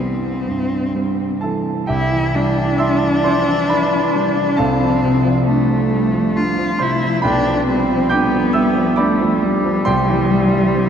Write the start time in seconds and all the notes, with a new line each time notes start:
Already playing: C2 E3 C4
0.00 G3 C4
0.48 G2
0.95 G3 C4
1.41 E3 A4 A5
1.87 C2 E4 G4 E5 G5
2.12 E3
2.35 G3 D4
2.58 E3
2.78 E4 E5 C6 E6
3.03 E3
3.24 F3 C5 C6
3.48 E3
3.69 E4 B4 B5
3.93 E3
4.15 G3
4.37 E3
4.57 C2 C4 A4 F5 A5
4.81 F3
5.03 C3
5.25 F3
5.48 A3 D4
5.70 F3
5.92 G3
6.13 F3
6.36 D4 F4
6.59 F3
6.79 C3 E4 C5 C6
7.03 F3
7.22 B1 D4 B4 G5 B5
7.46 F3
7.67 G3 C4
7.90 F3
8.09 B3 D4 G5 D6 G6
8.33 F3
8.53 G3 E5 E6
8.77 F3
8.96 A3 D4 D5 B5 D6
9.21 F3
9.43 G3
9.65 F3
9.85 C2 C5 G5 C6
10.09 E3
10.31 G3
10.53 E3
10.75 C4